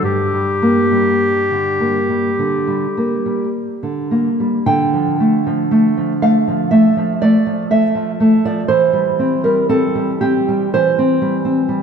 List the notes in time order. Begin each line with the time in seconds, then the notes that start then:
0.03 G2 G4
0.33 G3
0.62 A#3
0.92 G3
1.51 D3
1.80 A#3
2.09 G3
2.39 D3
2.67 G3
2.97 A#3
3.26 G3
3.83 D3
4.11 A#3
4.40 G3
4.66 D3 G5
4.93 F3
5.20 A3
5.47 F3
5.71 A3
5.97 F3
6.22 A3 F5
6.48 F3
6.71 A3 E5
6.97 F3
7.22 A3 D5
7.46 F3
7.70 A3 E5
7.95 F3
8.20 A3
8.45 F3 D5
8.68 E3 C5
8.93 G3
9.19 C4
9.44 G3 A#4
9.69 C4 A4
9.95 G3
10.21 C4 G4
10.48 G3
10.74 E3 C5
10.99 C4
11.22 G3
11.45 C4
11.69 G3